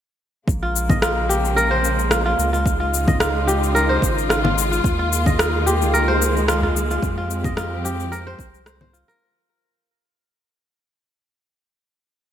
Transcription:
0.48 A#1 C#3 G#3 A#3, kick, cabasa
0.63 F4
0.76 cabasa
0.89 D#5, kick, low conga, cabasa
1.02 F4, cross-stick, cabasa
1.29 G4, cabasa
1.45 cabasa
1.56 A#4, cabasa
1.71 C5
1.84 cabasa
1.99 cabasa
2.11 F4, cross-stick, cabasa
2.26 F4
2.39 C#2, cabasa
2.53 F4, cabasa
2.66 C#3 D#4 F4, kick, cabasa
2.80 F4
2.94 cabasa
3.08 D#5, kick, low conga, cabasa
3.20 F4, cross-stick, cabasa
3.47 G4, cabasa
3.63 cabasa
3.75 A#4, cabasa
3.89 C5
4.02 G#1, kick, cabasa
4.18 cabasa
4.29 F4, cross-stick, cabasa
4.44 F4, low conga
4.58 cabasa
4.72 F4, cabasa
4.84 D#2 D#3 G#3 A#3, kick, cabasa
4.99 F4
5.13 cabasa
5.26 D#5, kick, low conga, cabasa
5.39 F4, cross-stick, cabasa
5.66 G4, cabasa
5.81 C#2, cabasa
5.94 A#4, cabasa
6.08 C5
6.22 cabasa
6.37 cabasa
6.48 F4, cross-stick, cabasa
6.62 F4, udu
6.76 cabasa
6.91 F4, cabasa
7.02 F2 F3 C4 G4, kick, cabasa
7.18 F4
7.30 cabasa
7.44 D#5, kick, low conga, cabasa
7.57 F4, cross-stick, cabasa
7.85 G4, cabasa
8.00 cabasa
8.12 A#4, cabasa
8.27 C5
8.39 C2, kick, cabasa
8.54 cabasa
8.66 C5, cross-stick, cabasa
8.81 C5, low conga
8.93 F4, cabasa
9.08 A#4, cabasa

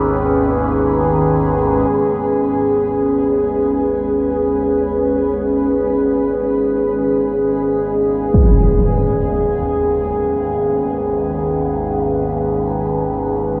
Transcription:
Already playing: G#1 D#2 C#4 G#4 B4
1.92 G#1 D#2
8.34 impact

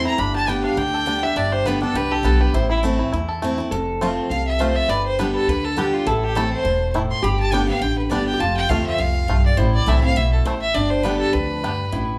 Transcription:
Already playing: E2 E3 A3 C4 E4 A4
0.05 E4 A#5
0.18 G1 G2 D4 B5
0.35 G4 A5
0.47 D3 G3 B3 G4 G5
0.64 D4 F5
0.77 D2 D3 G4 G5
0.94 A4
1.06 D3 G3 B3 D4 G4
1.23 G4 E5
1.36 G1 G2 D4 D5
1.52 G4 C5
1.66 D3 G3 B3 G4 B4
1.81 B3 D4 G4 A4
1.94 C2 D3 G4 B4
2.11 G4 A4
2.23 B1 D3 G3 B3 G4 A4
2.40 G4 B4
2.54 A1 A2 E4 C5
2.70 E4
2.83 E3 A3 C4 E4
2.99 E4
3.12 E2 E4
3.29 A4
3.42 E3 A3 C4 E4
3.58 C4 E4
3.71 F1 F2 A4
4.01 F3 A3 C4 F4
4.30 C2 C3 F5
4.47 E5
4.59 F3 A3 C4 F4 C5
4.75 E5
4.88 G1 G2 B4 D5
5.05 C5
5.19 D3 G3 B3 D4 G4 B4
5.35 A4
5.47 D2 D3 B4
5.65 A4
5.76 D3 G3 B3 D4 G4
5.93 F4
6.06 A1 A2 E4 A4
6.24 G4
6.35 E3 A3 C4 E4 A4
6.53 C5
6.65 E1 B2
6.94 A2 A3 E4
7.11 C6
7.22 G1 G2 G4 B5
7.39 A5
7.52 D3 G3 B3 D4 G4 G5
7.67 B3 G4 F5
7.81 A1 D3 G5
7.98 B4
8.10 G1 D3 G3 B3 D4 G4 D5
8.27 G5
8.34 G4
8.39 F1 F2 F4 A5
8.56 G5
8.69 D2 F3 A3 C4 F4 F5
8.86 E5
8.98 C2 F2 F5
9.28 B1 G2 A3 F4
9.46 D5
9.57 A1 A2 E4 C5
9.74 D5
9.86 C2 E3 A3 C4 E4 E5
10.02 C4 E4 F5
10.16 B1 B2 E5
10.32 A4
10.45 A1 A2 A3 E4 C5
10.61 E5
10.74 G1 G2 D4 D5
10.90 C5
11.03 D3 G3 B3 D4 G4 B4
11.19 A4
11.33 D2 F2 B4
11.64 G2 B3 D4 G4
11.92 A1 A2 E4

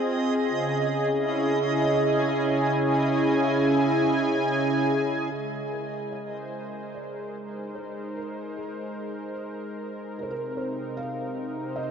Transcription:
Already playing: C4 F4 G#4 D#5
0.49 C#3
1.04 C#4
1.11 E4
1.98 G#5
5.32 G#3 G#4
5.72 A#4
6.02 A#4
6.13 D#5
6.19 C5
6.95 D5
7.36 D#4
7.75 C5
8.16 A#4
8.57 G#4
10.18 C3 A#4
10.23 C5
10.31 A#4
10.36 C4
10.56 D#4 C5
10.97 F5
11.58 C5
11.76 D#5

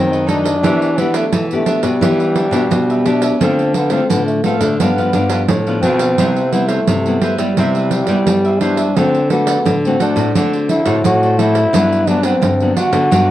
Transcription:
Already playing: F#2 D#3 F#3 A3 C4 D#4
0.11 A4 B4 D#5, pandeiro
0.26 F#3 A3 D4 D#4 A4 B4 D#5, pandeiro
0.31 D#4
0.43 A4 B4 D#5, pandeiro
0.62 E3 B3 D4 G4 B4 E5, pandeiro
0.82 pandeiro
0.96 B3 D4 G4 B4 E5, pandeiro
1.00 G4
1.13 A3 D4 G4 B4 E5, pandeiro
1.33 B2 E3, pandeiro
1.51 A3 B3 D4 G4, pandeiro
1.66 D4 G4 B4 E5, pandeiro
1.83 B2 G3 B3 D4 G4 B4 E5, pandeiro
2.01 E3 B3 D4 G4 B4 E5, pandeiro
2.20 G4 B4 E5, pandeiro
2.36 D4 G4 B4 E5, pandeiro
2.51 B2 B3 D4 G4 B4 E5, pandeiro
2.71 B2, pandeiro
2.90 G4 B4 E5, pandeiro
3.05 B3 D4 G4 B4 E5, pandeiro
3.22 G4 B4 E5, pandeiro
3.40 D3 A3 C4 D4 F4 A4 C5, pandeiro
3.44 F5
3.59 pandeiro
3.74 B3 D4 A4 C5 F5, pandeiro
3.90 A3 C4 D4 F4 A4 C5 F5, pandeiro
4.10 A2 D3 A3 B3 C4 F4, pandeiro
4.26 A3, pandeiro
4.43 A3 B3 C4 D4 F4 A4 C5 F5, pandeiro
4.59 D3 A3 C5 F5, pandeiro
4.64 A4
4.78 G2 F3 B3 D4 G4 B4, pandeiro
4.82 F5
4.98 F3 B3 D4 G4 B4 F5, pandeiro
5.13 G2 F3 B3 D4 G4 B4 F5, pandeiro
5.30 D4 G4 B4 F5, pandeiro
5.49 A2 D3, pandeiro
5.67 F3 B3 D4 G4 B4 F5, pandeiro
5.82 B2 C4 D4 G4 B4 F5, pandeiro
5.99 G4 B4 F5, pandeiro
6.18 C3 G3 B3 E4 G4 B4 C5 E5, pandeiro
6.36 pandeiro
6.52 G3 B3 E4 G4 B4 C5 E5, pandeiro
6.68 A3 G4 B4 C5 E5, pandeiro
6.87 G2 C3, pandeiro
7.06 G3 B3 E4, pandeiro
7.21 G4 B4 C5 E5, pandeiro
7.38 G3 B3 E4 B4 C5 E5, pandeiro
7.57 C3 G3 B3 E4 G4 B4 C5 E5, pandeiro
7.75 B4 C5 E5, pandeiro
7.91 G4 B4 C5 E5, pandeiro
8.07 G3 B3 E4 G4 B4 C5 E5, pandeiro
8.27 G2 G3, pandeiro
8.45 B4 C5 E5, pandeiro
8.60 G3 B3 D4 E4 G4 B4 C5 E5, pandeiro
8.78 B4 C5 E5, pandeiro
8.96 D3 A3 C4 F#4 A4 C5 D5, pandeiro
9.15 pandeiro
9.30 A3 B3 F#4 A4 C5 D5, pandeiro
9.47 F#4 A4 C5 D5, pandeiro
9.65 A2 D3, pandeiro
9.85 A3 C4 F#4, pandeiro
10.00 D4 F#4 A4 C5 D5, pandeiro
10.16 A2 A3 C4 F#4 A4 C5 D5, pandeiro
10.35 D3 A3 C4 F#4 A4 C5 D5, pandeiro
10.53 A4 C5 D5, pandeiro
10.69 E4 F#4 A4 C5 D5, pandeiro
10.86 A2 A3 C4 F#4 A4 C5 D5, pandeiro
11.04 A2 F#4, pandeiro
11.23 A4 C5 D5, pandeiro
11.39 A3 C4 E4 F#4 A4 C5 D5, pandeiro
11.54 A4 C5 D5, pandeiro
11.73 G2 F#3 B3 D4 G4 B4 F#5, pandeiro
11.92 pandeiro
12.07 F#3 B3 D4 G4 B4 F#5, pandeiro
12.23 C4 D4 G4 B4 F#5, pandeiro
12.42 G2 D3, pandeiro
12.61 F#3 B3 D4, pandeiro
12.76 D4 F#4 G4 B4 F#5, pandeiro
12.92 D3 F#3 B3 D4 G4 B4 F#5, pandeiro
13.11 G2 F#3 B3 D4 G4 B4 F#5, pandeiro

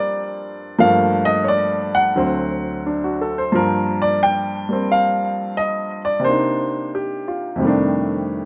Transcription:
Already playing: G2 F3 G3 A#3 C4 D5
0.78 G2 F3 A3 A#3 F5
1.25 D#5
1.44 C#5
1.48 D5
1.95 F#5
2.15 D2 D3 F#3 C4
2.86 D4
3.04 F#4
3.21 A4
3.38 C5
3.52 G2 F3 A#4
3.57 A#3
4.02 D5
4.23 G5
4.69 G3 A#3 C4
4.92 F5
5.57 D#5
6.05 D5
6.20 C3
6.24 A#3 C5
6.28 D4 D#4
6.95 G4
7.28 F4
7.56 F2 C3
7.60 D#3 G3
7.65 A3 D4

